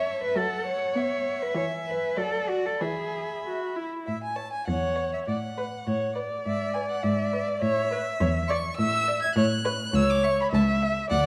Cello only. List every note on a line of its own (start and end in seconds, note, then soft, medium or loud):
0.00 0.21 C#5 medium
0.24 0.38 B4 medium
0.37 0.66 A4 medium
0.67 1.44 C#5 medium
1.42 1.56 B4 medium
1.56 1.64 C#5 medium
1.87 2.19 B4 medium
2.17 2.50 A4 medium
2.49 2.68 F#4 medium
2.66 2.83 A4 medium
2.81 3.45 G#4 medium
4.08 4.55 A2 medium
4.68 5.15 E2 medium
5.28 5.75 A2 medium
5.87 6.34 A2 medium
6.46 6.92 G#2 medium
7.04 7.50 G#2 medium
7.62 8.09 A2 medium
8.21 8.67 E2 medium
8.79 9.24 A2 medium
9.36 9.82 A2 loud
9.94 10.40 C#2 medium
10.53 10.99 C#2 medium
11.11 11.26 D2 medium